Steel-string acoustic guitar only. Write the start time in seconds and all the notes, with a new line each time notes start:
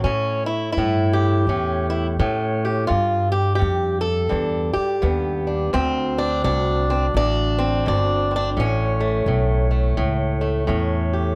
0.04 A2 C#4
0.46 E4
0.72 E4
0.78 A2
1.13 G4
1.49 A2 C#4
1.90 E4
2.20 A2 C#4
2.65 G4
2.87 G2 F4
3.32 G4
3.55 G2 G4
4.01 A4
4.29 G2 D4
4.73 G4
5.02 G2 B3
5.47 D4
5.73 D2 C4
6.18 D4
6.44 D2 D4
6.90 C4
7.16 D2 D4
7.59 C4
7.86 D2 D4
8.31 C4
8.36 D4
8.57 A2 C#4
9.00 A3
9.28 A2
9.71 A3
9.97 A2
10.41 A3
10.67 A2 C#4
11.13 G4